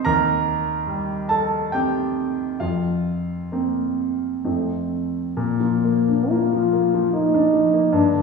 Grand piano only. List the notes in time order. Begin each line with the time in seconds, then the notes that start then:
0.05 D#2 A#4 A#5
0.87 G3
1.29 A4 A5
1.72 C4 G4 G5
2.60 F2 F4 F5
3.52 A#3 C4
4.45 F2 F3 A3 C4
5.37 A#2
5.60 F3
5.85 A#3
6.08 D4
6.31 A#3
6.53 F3
6.73 A#3
6.94 F3
7.13 A#3
7.34 D4
7.53 F3
7.74 A#3
7.92 G2
8.13 D3